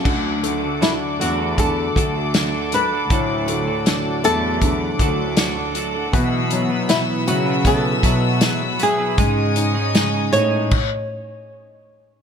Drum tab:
CC |x-------|--------|--------|----x---|
HH |-xxxxxxx|xxxxxxxx|xxxxxxxx|xxxx----|
SD |--o---o-|--o---o-|--o---o-|--o-----|
BD |o---oo--|o---oo--|o---oo--|o---o---|